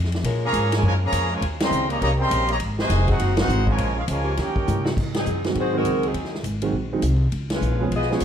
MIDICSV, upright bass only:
0, 0, Header, 1, 2, 480
1, 0, Start_track
1, 0, Tempo, 295276
1, 393, Time_signature, 4, 2, 24, 8
1, 13406, End_track
2, 0, Start_track
2, 0, Title_t, "Upright bass"
2, 0, Program_c, 0, 32
2, 0, Note_on_c, 0, 41, 97
2, 373, Note_off_c, 0, 41, 0
2, 383, Note_on_c, 0, 46, 90
2, 853, Note_off_c, 0, 46, 0
2, 862, Note_on_c, 0, 44, 96
2, 1332, Note_off_c, 0, 44, 0
2, 1342, Note_on_c, 0, 42, 92
2, 1812, Note_off_c, 0, 42, 0
2, 1824, Note_on_c, 0, 41, 91
2, 2288, Note_off_c, 0, 41, 0
2, 2298, Note_on_c, 0, 39, 88
2, 2769, Note_off_c, 0, 39, 0
2, 2781, Note_on_c, 0, 37, 101
2, 3251, Note_off_c, 0, 37, 0
2, 3276, Note_on_c, 0, 36, 88
2, 3738, Note_off_c, 0, 36, 0
2, 3751, Note_on_c, 0, 34, 97
2, 4215, Note_off_c, 0, 34, 0
2, 4226, Note_on_c, 0, 32, 85
2, 4692, Note_off_c, 0, 32, 0
2, 4706, Note_on_c, 0, 29, 105
2, 5172, Note_off_c, 0, 29, 0
2, 5192, Note_on_c, 0, 30, 91
2, 5647, Note_off_c, 0, 30, 0
2, 5656, Note_on_c, 0, 32, 105
2, 6127, Note_off_c, 0, 32, 0
2, 6148, Note_on_c, 0, 34, 90
2, 6613, Note_off_c, 0, 34, 0
2, 6627, Note_on_c, 0, 37, 99
2, 7092, Note_off_c, 0, 37, 0
2, 7112, Note_on_c, 0, 39, 89
2, 7575, Note_off_c, 0, 39, 0
2, 7603, Note_on_c, 0, 43, 99
2, 8061, Note_off_c, 0, 43, 0
2, 8071, Note_on_c, 0, 44, 79
2, 8535, Note_off_c, 0, 44, 0
2, 8556, Note_on_c, 0, 42, 85
2, 9014, Note_off_c, 0, 42, 0
2, 9023, Note_on_c, 0, 44, 78
2, 9487, Note_off_c, 0, 44, 0
2, 9496, Note_on_c, 0, 37, 85
2, 9968, Note_off_c, 0, 37, 0
2, 9977, Note_on_c, 0, 39, 77
2, 10445, Note_off_c, 0, 39, 0
2, 10455, Note_on_c, 0, 32, 92
2, 10925, Note_off_c, 0, 32, 0
2, 10935, Note_on_c, 0, 34, 75
2, 11409, Note_off_c, 0, 34, 0
2, 11417, Note_on_c, 0, 36, 94
2, 11891, Note_off_c, 0, 36, 0
2, 11902, Note_on_c, 0, 37, 78
2, 12365, Note_off_c, 0, 37, 0
2, 12375, Note_on_c, 0, 34, 99
2, 12851, Note_off_c, 0, 34, 0
2, 12868, Note_on_c, 0, 35, 77
2, 13333, Note_off_c, 0, 35, 0
2, 13343, Note_on_c, 0, 37, 81
2, 13406, Note_off_c, 0, 37, 0
2, 13406, End_track
0, 0, End_of_file